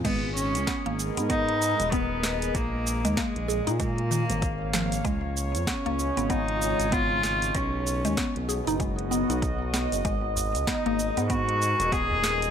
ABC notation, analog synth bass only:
X:1
M:4/4
L:1/16
Q:"Swing 16ths" 1/4=96
K:G#dor
V:1 name="Analog synth bass" clef=bass
G,,,3 C,, z G,,,2 G,,4 D,,,4- D,,, | A,,,3 D,, z A,,,2 A,,4 G,,,4- G,,, | C,,3 E,, z C,,2 G,,,4 G,,,4- G,,, | B,,,3 D,, z B,,,2 F,,,4 B,,,4 F,,, |
G,,,3 C,, z G,,,2 G,,4 D,,,4- D,,, |]